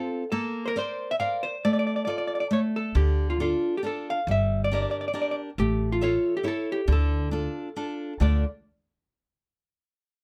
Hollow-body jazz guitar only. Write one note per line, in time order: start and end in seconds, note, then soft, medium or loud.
0.32 0.64 A4 loud
0.66 0.76 A#4 loud
0.66 0.68 C5 medium
0.79 1.08 C5 medium
1.11 1.15 E5 medium
1.20 1.44 F5 medium
1.43 1.64 C5 medium
1.65 1.72 D5 loud
1.73 1.78 D5 medium
1.79 1.86 D5 medium
1.87 1.94 D5 medium
1.96 2.02 D5 medium
2.05 2.09 D5 medium
2.10 2.17 D5 medium
2.18 2.25 D5 medium
2.27 2.34 D5 medium
2.35 2.39 D5 medium
2.40 2.47 D5 medium
2.53 2.59 C#5 medium
2.76 2.95 A4 medium
2.97 3.28 G4 medium
3.30 3.40 F4 medium
3.42 3.76 F4 medium
3.77 3.81 G4 medium
3.86 4.07 A4 medium
4.10 4.27 F5 loud
4.31 4.61 E5 loud
4.64 4.73 D5 medium
4.75 4.81 D5 medium
4.82 4.88 D5 medium
4.91 4.97 D5 medium
5.01 5.05 D5 medium
5.08 5.11 D5 medium
5.15 5.19 D5 soft
5.22 5.26 D5 medium
5.31 5.35 D5 medium
5.60 5.92 G4 medium
5.92 6.03 F4 medium
6.04 6.34 F4 medium
6.37 6.46 G4 medium
6.48 6.69 A4 medium
6.72 6.91 G4 medium
6.92 7.75 A4 medium
8.22 8.44 D5 medium